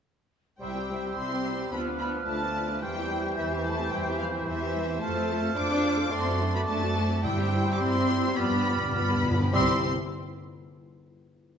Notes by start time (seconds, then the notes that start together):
0.60 C2 G3 E4 C5 E5 G5 E6
0.75 C4 G4 G5
0.88 G3 E4 C5 E5
1.02 C4 G4 G5
1.16 C2 G3 C4 E4 C5 C6
1.20 E5
1.31 C4 G4 G5
1.44 G3 E4 C5 E5
1.58 C4 G4 G5
1.71 D2 F3 B3 D4 F4 B4 D5 B5 F6
1.86 B3 D4 F4 B4
1.99 B3 D4 F4 D5 B5
2.14 B3 D4 F4 B4
2.27 D2 A3 D4 F4 D5 A5
2.41 B3 D4 F4 B4
2.55 D4 F4 D5
2.69 B3 D4 F4 B4
2.81 E2 E3 G3 E4 C5 G5 G6
2.95 C4 G4 E5
3.09 G3 E4 C5
3.23 C4 G4 E5
3.36 E2 E3 G3 E4 C5 E5
3.49 C4 G4 E5
3.63 G3 A3 E4 C5 A5
3.77 C4 G4 E5
3.91 E2 G3 E4 C5 G5
4.06 C4 G4 E5
4.17 F3 G3 E4 C5 F5
4.32 C4 G4 E5
4.45 E2 E3 G3 E4 C5 E5
4.59 C4 G4 E5
4.72 G3 E4 C5
4.86 C4 G4 E5
4.98 F2 F3 A3 F4 A5 F6
5.03 A4 C5
5.14 C4 F4 A4
5.29 A3 F4 A4 C5
5.42 C4 F4 A4
5.54 F2 A3 D4 F4 A4 C5 D6
5.69 C4 F4 A4
5.83 A3 F4 A4 C5
5.97 C4 F4 A4
6.11 F#2 A3 C4 D4 F#4 C5 D5 C6 D6
6.25 C4 F#4 A4 D5
6.39 A3 D4 F#4 C5
6.53 B3 C4 F#4 A4 D5 B5
6.67 F#2 A3 D4 F#4 C5 A5
6.81 C4 F#4 A4 D5
6.96 A3 D4 F#4 C5
7.09 C4 F#4 A4 D5
7.23 G2 G3 E4 C5 G5 E6
7.37 C4 G4 E5
7.50 G3 E4 C5
7.65 C4 G4 E5
7.72 D6
7.79 G2 G3 C4 E4 C5 C6
7.93 C4 G4 E5
8.08 G3 E4 C5
8.23 C4 G4 E5
8.35 G2 F3 B3 F4 B4 D5 B5 F6
8.44 G2
8.51 G2 G3 D4 G4 B4
8.59 G2
8.65 F3 F4 B4 D5
8.76 G2 G3 D4
8.80 G2 G4 B4
8.92 G2 F3 B3 F4 B5
8.96 G2 B4 D5
9.07 G2 G3 D4 G4 B4
9.15 G2
9.23 G2 F3 F4 B4 D5
9.31 G2
9.38 G2 G3 D4 G4 B4
9.52 C2 C3 G3 C4 E4 G4 C5 E5 C6 E6